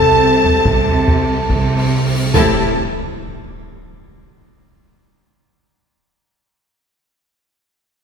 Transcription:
0, 0, Header, 1, 11, 480
1, 0, Start_track
1, 0, Key_signature, 0, "minor"
1, 0, Tempo, 849858
1, 1327, Time_signature, 4, 2, 24, 8
1, 1328, Tempo, 831025
1, 4613, End_track
2, 0, Start_track
2, 0, Title_t, "Violin section"
2, 0, Program_c, 0, 48
2, 0, Note_on_c, 0, 81, 91
2, 1063, Note_off_c, 0, 81, 0
2, 1337, Note_on_c, 0, 81, 89
2, 1602, Note_off_c, 0, 81, 0
2, 4613, End_track
3, 0, Start_track
3, 0, Title_t, "Violin section"
3, 0, Program_c, 1, 48
3, 0, Note_on_c, 1, 81, 98
3, 1090, Note_off_c, 1, 81, 0
3, 1331, Note_on_c, 1, 81, 93
3, 1599, Note_off_c, 1, 81, 0
3, 4613, End_track
4, 0, Start_track
4, 0, Title_t, "Trumpet section"
4, 0, Program_c, 2, 61
4, 0, Note_on_c, 2, 81, 88
4, 1063, Note_off_c, 2, 81, 0
4, 1328, Note_on_c, 2, 64, 90
4, 1551, Note_off_c, 2, 64, 0
4, 4613, End_track
5, 0, Start_track
5, 0, Title_t, "French horn section"
5, 0, Program_c, 3, 60
5, 0, Note_on_c, 3, 69, 98
5, 1089, Note_off_c, 3, 69, 0
5, 1315, Note_on_c, 3, 69, 98
5, 1544, Note_off_c, 3, 69, 0
5, 4613, End_track
6, 0, Start_track
6, 0, Title_t, "Viola section"
6, 0, Program_c, 4, 48
6, 0, Note_on_c, 4, 60, 80
6, 1061, Note_off_c, 4, 60, 0
6, 1327, Note_on_c, 4, 60, 81
6, 1328, Note_on_c, 4, 67, 87
6, 1597, Note_off_c, 4, 60, 0
6, 1597, Note_off_c, 4, 67, 0
6, 4613, End_track
7, 0, Start_track
7, 0, Title_t, "Cello section"
7, 0, Program_c, 5, 48
7, 0, Note_on_c, 5, 48, 64
7, 312, Note_off_c, 5, 48, 0
7, 368, Note_on_c, 5, 48, 72
7, 791, Note_off_c, 5, 48, 0
7, 846, Note_on_c, 5, 48, 69
7, 1270, Note_off_c, 5, 48, 0
7, 1326, Note_on_c, 5, 45, 89
7, 1596, Note_off_c, 5, 45, 0
7, 4613, End_track
8, 0, Start_track
8, 0, Title_t, "Double bass section"
8, 0, Program_c, 6, 48
8, 0, Note_on_c, 6, 36, 72
8, 308, Note_off_c, 6, 36, 0
8, 365, Note_on_c, 6, 36, 68
8, 790, Note_off_c, 6, 36, 0
8, 844, Note_on_c, 6, 36, 73
8, 1270, Note_off_c, 6, 36, 0
8, 1329, Note_on_c, 6, 33, 96
8, 1598, Note_off_c, 6, 33, 0
8, 4613, End_track
9, 0, Start_track
9, 0, Title_t, "Cymbal swell"
9, 0, Program_c, 7, 119
9, 0, Note_on_c, 7, 60, 57
9, 1326, Note_off_c, 7, 60, 0
9, 4613, End_track
10, 0, Start_track
10, 0, Title_t, "Impact"
10, 0, Program_c, 8, 103
10, 1328, Note_on_c, 8, 60, 81
10, 3254, Note_off_c, 8, 60, 0
10, 4613, End_track
11, 0, Start_track
11, 0, Title_t, "Taiko and cinematic ensemble drums"
11, 8, Note_on_c, 9, 43, 53
11, 65, Note_off_c, 9, 43, 0
11, 247, Note_on_c, 9, 43, 52
11, 304, Note_off_c, 9, 43, 0
11, 369, Note_on_c, 9, 41, 88
11, 426, Note_off_c, 9, 41, 0
11, 489, Note_on_c, 9, 43, 50
11, 545, Note_off_c, 9, 43, 0
11, 609, Note_on_c, 9, 43, 59
11, 666, Note_off_c, 9, 43, 0
11, 846, Note_on_c, 9, 41, 78
11, 902, Note_off_c, 9, 41, 0
11, 1326, Note_on_c, 9, 43, 91
11, 1383, Note_off_c, 9, 43, 0
11, 4613, End_track
0, 0, End_of_file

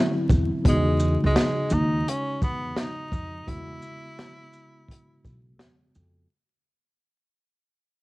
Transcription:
0, 0, Header, 1, 5, 480
1, 0, Start_track
1, 0, Key_signature, 4, "major"
1, 0, Tempo, 705882
1, 442, Time_signature, 4, 2, 24, 8
1, 5460, End_track
2, 0, Start_track
2, 0, Title_t, "Tenor saxophone"
2, 0, Program_c, 0, 66
2, 0, Note_on_c, 0, 57, 100
2, 203, Note_off_c, 0, 57, 0
2, 466, Note_on_c, 0, 56, 91
2, 825, Note_off_c, 0, 56, 0
2, 858, Note_on_c, 0, 56, 91
2, 1178, Note_on_c, 0, 63, 98
2, 1188, Note_off_c, 0, 56, 0
2, 1421, Note_on_c, 0, 61, 104
2, 1431, Note_off_c, 0, 63, 0
2, 1652, Note_off_c, 0, 61, 0
2, 1656, Note_on_c, 0, 59, 98
2, 1900, Note_on_c, 0, 63, 103
2, 1911, Note_off_c, 0, 59, 0
2, 2375, Note_on_c, 0, 64, 124
2, 2385, Note_off_c, 0, 63, 0
2, 3809, Note_off_c, 0, 64, 0
2, 5460, End_track
3, 0, Start_track
3, 0, Title_t, "Tine electric piano"
3, 0, Program_c, 1, 4
3, 0, Note_on_c, 1, 50, 63
3, 0, Note_on_c, 1, 54, 53
3, 0, Note_on_c, 1, 60, 57
3, 0, Note_on_c, 1, 64, 71
3, 419, Note_off_c, 1, 50, 0
3, 421, Note_off_c, 1, 54, 0
3, 426, Note_off_c, 1, 60, 0
3, 428, Note_off_c, 1, 64, 0
3, 435, Note_on_c, 1, 49, 61
3, 443, Note_on_c, 1, 66, 52
3, 449, Note_on_c, 1, 56, 54
3, 454, Note_on_c, 1, 63, 69
3, 2331, Note_off_c, 1, 49, 0
3, 2335, Note_off_c, 1, 66, 0
3, 2338, Note_off_c, 1, 56, 0
3, 2341, Note_off_c, 1, 63, 0
3, 2352, Note_on_c, 1, 49, 56
3, 2359, Note_on_c, 1, 66, 59
3, 2364, Note_on_c, 1, 56, 61
3, 2370, Note_on_c, 1, 59, 69
3, 4250, Note_off_c, 1, 49, 0
3, 4254, Note_off_c, 1, 66, 0
3, 4256, Note_off_c, 1, 56, 0
3, 4259, Note_off_c, 1, 59, 0
3, 5460, End_track
4, 0, Start_track
4, 0, Title_t, "Upright bass"
4, 0, Program_c, 2, 32
4, 202, Note_on_c, 2, 40, 84
4, 336, Note_off_c, 2, 40, 0
4, 444, Note_on_c, 2, 40, 107
4, 781, Note_off_c, 2, 40, 0
4, 841, Note_on_c, 2, 37, 89
4, 910, Note_off_c, 2, 37, 0
4, 1164, Note_on_c, 2, 39, 99
4, 1367, Note_off_c, 2, 39, 0
4, 1645, Note_on_c, 2, 40, 86
4, 1847, Note_off_c, 2, 40, 0
4, 2121, Note_on_c, 2, 41, 79
4, 2325, Note_off_c, 2, 41, 0
4, 2366, Note_on_c, 2, 40, 102
4, 2568, Note_off_c, 2, 40, 0
4, 3565, Note_on_c, 2, 35, 73
4, 3807, Note_off_c, 2, 35, 0
4, 3807, Note_on_c, 2, 40, 86
4, 4008, Note_off_c, 2, 40, 0
4, 4050, Note_on_c, 2, 41, 87
4, 4250, Note_off_c, 2, 41, 0
4, 5460, End_track
5, 0, Start_track
5, 0, Title_t, "Drums"
5, 200, Note_on_c, 9, 36, 96
5, 204, Note_on_c, 9, 82, 48
5, 268, Note_off_c, 9, 36, 0
5, 272, Note_off_c, 9, 82, 0
5, 443, Note_on_c, 9, 36, 107
5, 444, Note_on_c, 9, 42, 92
5, 511, Note_off_c, 9, 36, 0
5, 512, Note_off_c, 9, 42, 0
5, 678, Note_on_c, 9, 82, 54
5, 746, Note_off_c, 9, 82, 0
5, 923, Note_on_c, 9, 42, 61
5, 924, Note_on_c, 9, 38, 106
5, 991, Note_off_c, 9, 42, 0
5, 992, Note_off_c, 9, 38, 0
5, 1157, Note_on_c, 9, 82, 50
5, 1225, Note_off_c, 9, 82, 0
5, 1416, Note_on_c, 9, 42, 106
5, 1484, Note_off_c, 9, 42, 0
5, 1645, Note_on_c, 9, 36, 91
5, 1647, Note_on_c, 9, 82, 46
5, 1713, Note_off_c, 9, 36, 0
5, 1715, Note_off_c, 9, 82, 0
5, 1881, Note_on_c, 9, 38, 118
5, 1888, Note_on_c, 9, 42, 61
5, 1949, Note_off_c, 9, 38, 0
5, 1956, Note_off_c, 9, 42, 0
5, 2121, Note_on_c, 9, 36, 95
5, 2126, Note_on_c, 9, 82, 55
5, 2189, Note_off_c, 9, 36, 0
5, 2194, Note_off_c, 9, 82, 0
5, 2364, Note_on_c, 9, 36, 102
5, 2365, Note_on_c, 9, 42, 92
5, 2432, Note_off_c, 9, 36, 0
5, 2433, Note_off_c, 9, 42, 0
5, 2599, Note_on_c, 9, 82, 53
5, 2667, Note_off_c, 9, 82, 0
5, 2847, Note_on_c, 9, 42, 61
5, 2848, Note_on_c, 9, 38, 108
5, 2915, Note_off_c, 9, 42, 0
5, 2916, Note_off_c, 9, 38, 0
5, 3081, Note_on_c, 9, 82, 55
5, 3149, Note_off_c, 9, 82, 0
5, 3321, Note_on_c, 9, 36, 89
5, 3340, Note_on_c, 9, 42, 106
5, 3389, Note_off_c, 9, 36, 0
5, 3408, Note_off_c, 9, 42, 0
5, 3566, Note_on_c, 9, 36, 85
5, 3569, Note_on_c, 9, 82, 44
5, 3634, Note_off_c, 9, 36, 0
5, 3637, Note_off_c, 9, 82, 0
5, 3802, Note_on_c, 9, 38, 119
5, 3809, Note_on_c, 9, 42, 67
5, 3870, Note_off_c, 9, 38, 0
5, 3877, Note_off_c, 9, 42, 0
5, 4046, Note_on_c, 9, 82, 52
5, 4114, Note_off_c, 9, 82, 0
5, 5460, End_track
0, 0, End_of_file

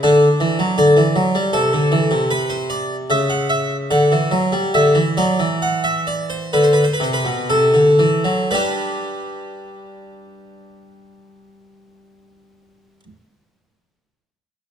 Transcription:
0, 0, Header, 1, 2, 480
1, 0, Start_track
1, 0, Key_signature, 1, "major"
1, 0, Tempo, 762389
1, 968, Time_signature, 4, 2, 24, 8
1, 1455, Tempo, 797872
1, 2415, Tempo, 853485
1, 3375, Tempo, 916031
1, 3855, Tempo, 955414
1, 4335, Tempo, 1013514
1, 4815, Tempo, 1043478
1, 7669, End_track
2, 0, Start_track
2, 0, Title_t, "Harpsichord"
2, 0, Program_c, 0, 6
2, 20, Note_on_c, 0, 62, 97
2, 21, Note_on_c, 0, 50, 85
2, 166, Note_off_c, 0, 50, 0
2, 254, Note_on_c, 0, 52, 82
2, 368, Note_off_c, 0, 52, 0
2, 373, Note_on_c, 0, 54, 80
2, 478, Note_off_c, 0, 62, 0
2, 487, Note_off_c, 0, 54, 0
2, 491, Note_on_c, 0, 50, 88
2, 492, Note_on_c, 0, 74, 105
2, 606, Note_off_c, 0, 50, 0
2, 609, Note_on_c, 0, 52, 77
2, 725, Note_off_c, 0, 52, 0
2, 728, Note_on_c, 0, 54, 83
2, 844, Note_off_c, 0, 54, 0
2, 850, Note_on_c, 0, 55, 88
2, 954, Note_off_c, 0, 74, 0
2, 965, Note_off_c, 0, 55, 0
2, 965, Note_on_c, 0, 69, 99
2, 966, Note_on_c, 0, 48, 85
2, 1084, Note_off_c, 0, 48, 0
2, 1091, Note_on_c, 0, 50, 82
2, 1207, Note_off_c, 0, 50, 0
2, 1208, Note_on_c, 0, 52, 87
2, 1328, Note_off_c, 0, 52, 0
2, 1328, Note_on_c, 0, 48, 82
2, 1440, Note_off_c, 0, 69, 0
2, 1452, Note_on_c, 0, 71, 98
2, 1567, Note_on_c, 0, 72, 96
2, 1569, Note_off_c, 0, 71, 0
2, 1686, Note_off_c, 0, 72, 0
2, 1688, Note_on_c, 0, 74, 105
2, 1837, Note_off_c, 0, 74, 0
2, 1911, Note_off_c, 0, 48, 0
2, 1929, Note_on_c, 0, 49, 86
2, 1931, Note_on_c, 0, 76, 95
2, 2047, Note_off_c, 0, 76, 0
2, 2048, Note_on_c, 0, 78, 99
2, 2166, Note_off_c, 0, 78, 0
2, 2167, Note_on_c, 0, 76, 95
2, 2320, Note_off_c, 0, 76, 0
2, 2400, Note_off_c, 0, 49, 0
2, 2415, Note_on_c, 0, 50, 92
2, 2416, Note_on_c, 0, 78, 101
2, 2528, Note_off_c, 0, 50, 0
2, 2534, Note_on_c, 0, 52, 82
2, 2644, Note_on_c, 0, 54, 87
2, 2647, Note_off_c, 0, 52, 0
2, 2761, Note_off_c, 0, 54, 0
2, 2762, Note_on_c, 0, 55, 82
2, 2873, Note_off_c, 0, 78, 0
2, 2881, Note_off_c, 0, 55, 0
2, 2885, Note_on_c, 0, 50, 89
2, 2886, Note_on_c, 0, 76, 94
2, 3001, Note_on_c, 0, 52, 88
2, 3003, Note_off_c, 0, 50, 0
2, 3036, Note_off_c, 0, 76, 0
2, 3122, Note_off_c, 0, 52, 0
2, 3128, Note_on_c, 0, 54, 88
2, 3128, Note_on_c, 0, 74, 84
2, 3248, Note_off_c, 0, 54, 0
2, 3251, Note_on_c, 0, 52, 82
2, 3281, Note_off_c, 0, 74, 0
2, 3379, Note_on_c, 0, 78, 89
2, 3492, Note_off_c, 0, 78, 0
2, 3493, Note_on_c, 0, 76, 86
2, 3609, Note_off_c, 0, 76, 0
2, 3615, Note_on_c, 0, 74, 88
2, 3731, Note_off_c, 0, 74, 0
2, 3733, Note_on_c, 0, 72, 81
2, 3838, Note_off_c, 0, 52, 0
2, 3852, Note_off_c, 0, 72, 0
2, 3856, Note_on_c, 0, 71, 72
2, 3858, Note_on_c, 0, 50, 87
2, 3906, Note_off_c, 0, 71, 0
2, 3908, Note_on_c, 0, 72, 74
2, 3956, Note_on_c, 0, 71, 73
2, 3957, Note_off_c, 0, 72, 0
2, 4005, Note_off_c, 0, 50, 0
2, 4007, Note_off_c, 0, 71, 0
2, 4011, Note_on_c, 0, 72, 71
2, 4059, Note_on_c, 0, 71, 71
2, 4060, Note_off_c, 0, 72, 0
2, 4092, Note_on_c, 0, 48, 84
2, 4108, Note_on_c, 0, 72, 72
2, 4109, Note_off_c, 0, 71, 0
2, 4159, Note_off_c, 0, 72, 0
2, 4159, Note_on_c, 0, 71, 88
2, 4210, Note_off_c, 0, 48, 0
2, 4217, Note_on_c, 0, 47, 77
2, 4331, Note_off_c, 0, 71, 0
2, 4334, Note_off_c, 0, 47, 0
2, 4340, Note_on_c, 0, 69, 85
2, 4341, Note_on_c, 0, 48, 87
2, 4452, Note_off_c, 0, 48, 0
2, 4455, Note_on_c, 0, 50, 82
2, 4570, Note_off_c, 0, 50, 0
2, 4574, Note_on_c, 0, 52, 81
2, 4691, Note_off_c, 0, 52, 0
2, 4695, Note_on_c, 0, 54, 83
2, 4804, Note_off_c, 0, 69, 0
2, 4814, Note_off_c, 0, 54, 0
2, 4819, Note_on_c, 0, 71, 74
2, 4820, Note_on_c, 0, 55, 72
2, 4834, Note_on_c, 0, 67, 65
2, 4835, Note_on_c, 0, 62, 66
2, 6886, Note_off_c, 0, 71, 0
2, 6887, Note_off_c, 0, 55, 0
2, 6901, Note_off_c, 0, 67, 0
2, 6902, Note_off_c, 0, 62, 0
2, 7669, End_track
0, 0, End_of_file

